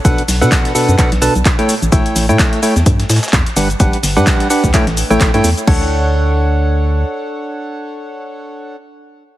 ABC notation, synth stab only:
X:1
M:4/4
L:1/16
Q:"Swing 16ths" 1/4=128
K:D
V:1 name="Synth stab"
[B,,DABf] z2 [B,,DABf]3 [B,,DABf]2 [B,,DABf] z [B,,DABa] z2 [A,EAcg] z2 | [A,EAcg]3 [A,EAcg]3 [A,EAcg] z6 z [G,DGBf] z | [G,DGBf] z2 [G,DGBf]3 [DGBf]2 [A,EAcg] z2 [A,EAcg]2 [A,EAcg] z2 | [DAcf]16- |
[DAcf]16 |]